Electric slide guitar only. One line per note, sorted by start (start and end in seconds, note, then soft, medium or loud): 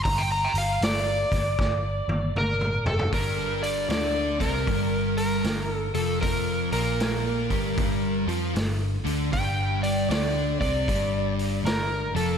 0.04 0.21 A#5 medium
0.18 0.29 G5 medium
0.32 0.55 A#5 medium
0.44 0.51 G5 medium
0.58 0.82 F5 medium
0.84 2.33 D5 medium
2.38 2.84 A#4 medium
2.87 3.14 A4 medium
3.14 3.65 A#4 medium
3.63 3.90 D5 medium
3.91 4.37 D5 medium
4.42 5.16 A#4 medium
5.18 5.73 A#4 medium
5.73 5.94 A4 medium
5.95 6.21 A4 medium
6.21 6.69 A#4 medium
6.73 8.24 A#4 medium
9.33 9.85 G5 loud
9.83 10.10 D5 medium
10.11 10.59 D5 medium
10.61 11.34 D5 medium
11.67 12.16 A#4 loud
12.16 12.38 A4 medium